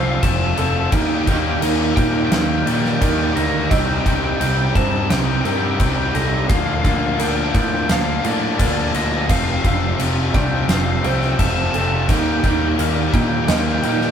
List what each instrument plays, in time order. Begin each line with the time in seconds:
Already playing: picked electric bass C2, overdriven electric guitar F2 C3, distorted electric guitar F3 A3 C4 F4, felt piano C5
0.04 lead electric guitar F5
0.11 lead electric guitar F5
0.22 picked electric bass F1, overdriven electric guitar F2 C3, distorted electric guitar F3 A3 C4 F4, lead electric guitar A5, kick, crash
0.31 lead electric guitar A5
0.38 lead electric guitar A5
0.46 lead electric guitar A5
0.55 picked electric bass F1, overdriven electric guitar F2, distorted electric guitar F3, felt piano A4, lead electric guitar A5, crash
0.59 overdriven electric guitar C3, distorted electric guitar A3 C4 F4, lead electric guitar A5
0.70 lead electric guitar A5
0.78 lead electric guitar A5
0.88 lead electric guitar A5
0.92 picked electric bass D#2, distorted electric guitar D#3 G3 A#3 D#4, lead electric guitar G5, kick, crash
1.00 lead electric guitar G5
1.06 lead electric guitar G5
1.14 lead electric guitar G5
1.21 lead electric guitar G5
1.27 picked electric bass D#2, distorted electric guitar D#3 G3 A#3 D#4, lead electric guitar G5, kick, crash
1.35 lead electric guitar G5
1.43 lead electric guitar G5
1.50 lead electric guitar G5
1.61 picked electric bass D#2, distorted electric guitar D#3 G3 A#3 D#4, felt piano A#4, crash
1.96 picked electric bass A#2, distorted electric guitar D#3 G3 A#3 D#4, lead electric guitar G5, kick, crash
2.03 lead electric guitar G5
2.12 lead electric guitar G5
2.18 lead electric guitar G5
2.27 lead electric guitar G5
2.31 picked electric bass D#2, distorted electric guitar D#3 G3 A#3 D#4, felt piano D#4, lead electric guitar G5, snare, crash
2.42 lead electric guitar G5
2.49 lead electric guitar G5
2.57 lead electric guitar G5
2.64 picked electric bass A#2, distorted electric guitar D#3 G3 A#3, lead electric guitar D5 G5, crash
2.68 distorted electric guitar D#4, lead electric guitar G5
2.73 lead electric guitar D5
2.78 lead electric guitar D5 G5
2.85 lead electric guitar D5 G5, snare
2.95 lead electric guitar D5 G5
3.01 picked electric bass D#2, distorted electric guitar D#3 G3 A#3 D#4, felt piano A#4, lead electric guitar D5 G5, kick, crash
3.09 lead electric guitar D5 G5
3.17 lead electric guitar D5 G5
3.24 lead electric guitar D5 G5
3.32 picked electric bass D2, distorted electric guitar D#3 G3 A#3, lead electric guitar D#5 G5
3.37 distorted electric guitar D#4, crash
3.43 lead electric guitar D#5
3.50 lead electric guitar D#5
3.57 lead electric guitar D#5
3.65 lead electric guitar D#5
3.70 picked electric bass C2, distorted electric guitar C3 G3 C4 D#4, felt piano D#5, lead electric guitar G5, kick, crash
3.78 lead electric guitar G5
3.86 lead electric guitar G5
3.93 lead electric guitar G5
4.00 lead electric guitar G5
4.05 picked electric bass C2, distorted electric guitar C3 G3 C4 D#4, lead electric guitar G5, kick, crash
4.16 lead electric guitar G5
4.25 lead electric guitar G5
4.31 lead electric guitar G5
4.40 picked electric bass C2, distorted electric guitar C3 G3 C4 D#4, lead electric guitar G5, crash
4.47 lead electric guitar G5
4.54 lead electric guitar G5
4.62 lead electric guitar G5
4.70 lead electric guitar G5
4.75 picked electric bass G2, distorted electric guitar C3 G3 C4 D#4, felt piano C5, lead electric guitar A5, kick, crash
4.83 lead electric guitar A5
4.89 lead electric guitar A5
4.96 lead electric guitar A5
5.04 lead electric guitar A5
5.10 picked electric bass C2, distorted electric guitar C3 G3 C4 D#4, lead electric guitar G5, snare, crash
5.17 lead electric guitar G5
5.25 lead electric guitar G5
5.33 lead electric guitar G5
5.41 picked electric bass G2, distorted electric guitar C3, felt piano A#4, lead electric guitar G5
5.45 distorted electric guitar G3 C4 D#4, lead electric guitar G5, crash
5.56 lead electric guitar G5
5.63 lead electric guitar G5
5.71 lead electric guitar G5
5.79 picked electric bass C2, distorted electric guitar C3 G3 C4 D#4, lead electric guitar G5, kick, crash
5.87 lead electric guitar G5
5.95 lead electric guitar G5
6.03 lead electric guitar G5
6.11 picked electric bass C2, distorted electric guitar C3, felt piano A4, lead electric guitar D#5 G5
6.15 distorted electric guitar G3 C4 D#4, crash
6.22 lead electric guitar D#5
6.29 lead electric guitar D#5
6.37 lead electric guitar D#5
6.44 lead electric guitar D#5
6.49 picked electric bass D2, overdriven electric guitar A#2, distorted electric guitar D3 F3 A#3 D4, lead electric guitar F5, kick, crash
6.57 lead electric guitar F5
6.66 lead electric guitar F5
6.73 lead electric guitar F5
6.82 picked electric bass D2, overdriven electric guitar A#2, distorted electric guitar D3 F3, lead electric guitar F5, kick, crash
6.86 distorted electric guitar A#3 D4, lead electric guitar F5
6.97 lead electric guitar F5
7.06 lead electric guitar F5
7.14 lead electric guitar F5
7.19 picked electric bass D2, overdriven electric guitar A#2, distorted electric guitar D3 F3 A#3 D4, felt piano A#4, lead electric guitar G5, crash
7.28 lead electric guitar G5
7.35 lead electric guitar G5
7.44 lead electric guitar G5
7.52 picked electric bass A2, overdriven electric guitar A#2, distorted electric guitar D3 F3 A#3 D4, lead electric guitar G5, kick, crash
7.59 lead electric guitar G5
7.68 lead electric guitar G5
7.75 lead electric guitar G5
7.83 lead electric guitar G5
7.89 picked electric bass D2, overdriven electric guitar A#2, distorted electric guitar D3 F3 A#3 D4, felt piano F5, lead electric guitar F5, snare, crash
7.98 lead electric guitar F5
8.05 lead electric guitar F5
8.12 lead electric guitar F5
8.20 distorted electric guitar D3, lead electric guitar F5
8.24 picked electric bass A2, overdriven electric guitar A#2, distorted electric guitar F3 A#3 D4, lead electric guitar D5, crash
8.33 lead electric guitar D5
8.42 lead electric guitar D5
8.49 lead electric guitar D5
8.58 picked electric bass D2, overdriven electric guitar A#2, distorted electric guitar D3 F3 A#3 D4, felt piano A#4, lead electric guitar D5, kick, crash
8.65 lead electric guitar D5
8.73 lead electric guitar D5
8.82 lead electric guitar D5
8.90 distorted electric guitar D3, lead electric guitar D5
8.94 picked electric bass D2, overdriven electric guitar A#2, distorted electric guitar F3 A#3 D4, lead electric guitar D#5, crash
9.03 lead electric guitar D#5
9.10 lead electric guitar D#5
9.17 lead electric guitar D#5
9.24 lead electric guitar D#5
9.29 picked electric bass F1, distorted electric guitar F2 C3 F3 A3 C4, felt piano F5, lead electric guitar F5, kick, crash
9.37 lead electric guitar F5
9.44 lead electric guitar F5
9.52 lead electric guitar F5
9.60 distorted electric guitar F2, lead electric guitar F5
9.64 picked electric bass F1, distorted electric guitar C3 F3 A3 C4, lead electric guitar F5, kick, crash
9.73 lead electric guitar F5
9.82 lead electric guitar F5
9.88 lead electric guitar F5
9.99 picked electric bass F1, distorted electric guitar F2 C3 F3 A3 C4, crash
10.34 picked electric bass C2, distorted electric guitar F2 C3 F3 A3 C4, felt piano D5, lead electric guitar G5, kick, crash
10.42 lead electric guitar G5
10.49 lead electric guitar G5
10.56 lead electric guitar G5
10.63 lead electric guitar G5
10.69 picked electric bass F1, distorted electric guitar F2 C3 F3 A3 C4, lead electric guitar F5, snare, crash
10.77 lead electric guitar F5
10.84 lead electric guitar F5
10.92 lead electric guitar F5
10.98 lead electric guitar F5
11.04 picked electric bass C2, distorted electric guitar F2 C3 F3 A3 C4, felt piano C5, lead electric guitar G5, crash
11.11 lead electric guitar G5
11.19 lead electric guitar G5, snare
11.26 lead electric guitar G5
11.32 lead electric guitar G5
11.38 picked electric bass F1, distorted electric guitar F2 C3 F3 A3 C4, lead electric guitar A5, kick, crash
11.47 lead electric guitar A5
11.55 lead electric guitar A5
11.63 lead electric guitar A5
11.71 picked electric bass F1, distorted electric guitar F2 C3 F3 A3, felt piano A4, lead electric guitar A5, crash
11.76 distorted electric guitar C4
11.80 lead electric guitar A5
11.87 lead electric guitar A5
11.96 lead electric guitar A5
12.03 lead electric guitar A5
12.08 picked electric bass D#2, distorted electric guitar D#3 G3 A#3 D#4, lead electric guitar G5, kick, crash
12.17 lead electric guitar G5
12.23 lead electric guitar G5
12.30 lead electric guitar G5
12.39 lead electric guitar G5
12.43 picked electric bass D#2, distorted electric guitar D#3 G3 A#3 D#4, lead electric guitar G5, kick, crash
12.53 lead electric guitar G5
12.60 lead electric guitar G5
12.67 lead electric guitar G5
12.78 picked electric bass D#2, distorted electric guitar D#3 G3 A#3 D#4, felt piano A#4, crash
13.13 picked electric bass A#2, distorted electric guitar D#3 G3 A#3 D#4, lead electric guitar G5, kick, crash
13.21 lead electric guitar G5
13.30 lead electric guitar G5
13.37 lead electric guitar G5
13.44 felt piano D#5, lead electric guitar G5
13.48 picked electric bass D#2, distorted electric guitar D#3 G3 A#3 D#4, lead electric guitar G5, snare, crash
13.59 lead electric guitar G5
13.67 lead electric guitar G5
13.74 lead electric guitar G5
13.82 picked electric bass A#2, distorted electric guitar D#3 G3 A#3 D#4, lead electric guitar G5, crash
13.90 lead electric guitar G5
13.97 lead electric guitar G5
14.01 lead electric guitar G5, snare